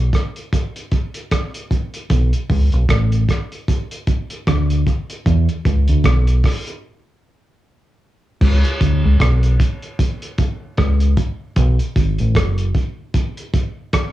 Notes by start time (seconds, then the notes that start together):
0.13 kick, cross-stick, closed hi-hat
0.36 closed hi-hat
0.53 kick, closed hi-hat
0.76 closed hi-hat
0.92 kick, closed hi-hat
1.14 closed hi-hat
1.31 kick, cross-stick, closed hi-hat
1.54 closed hi-hat
1.71 kick, closed hi-hat
1.94 closed hi-hat
2.10 B1, kick, closed hi-hat
2.33 closed hi-hat
2.50 C#2, kick, open hi-hat
2.72 B1, closed hi-hat
2.89 A1, kick, cross-stick, closed hi-hat
3.12 closed hi-hat
3.29 kick, cross-stick, closed hi-hat
3.52 closed hi-hat
3.68 kick, closed hi-hat
3.91 closed hi-hat
4.07 kick, closed hi-hat
4.30 closed hi-hat
4.47 D2, kick, cross-stick, closed hi-hat
4.70 closed hi-hat
4.87 kick, closed hi-hat
5.10 closed hi-hat
5.26 E2, kick, closed hi-hat
5.49 closed hi-hat
5.65 C#2, kick, closed hi-hat
5.88 D2, closed hi-hat
6.04 B1, kick, cross-stick, closed hi-hat
6.27 closed hi-hat
6.44 kick, cross-stick, open hi-hat
6.67 closed hi-hat
8.41 C#2, kick, crash
8.64 closed hi-hat
8.81 D2, kick, closed hi-hat
9.05 C#2
9.20 B1, kick, cross-stick, closed hi-hat
9.43 closed hi-hat
9.60 kick, closed hi-hat
9.82 closed hi-hat
9.99 kick, closed hi-hat
10.22 closed hi-hat
10.38 kick, closed hi-hat
10.77 C#2, kick, cross-stick, closed hi-hat
11.00 closed hi-hat
11.17 kick, closed hi-hat
11.56 B1, kick, closed hi-hat
11.79 closed hi-hat
11.96 G#1, kick, closed hi-hat
12.19 A1, closed hi-hat
12.35 F#1, kick, cross-stick, closed hi-hat
12.58 closed hi-hat
12.75 kick, closed hi-hat
13.14 kick, closed hi-hat
13.37 closed hi-hat
13.54 kick, closed hi-hat
13.93 kick, cross-stick, closed hi-hat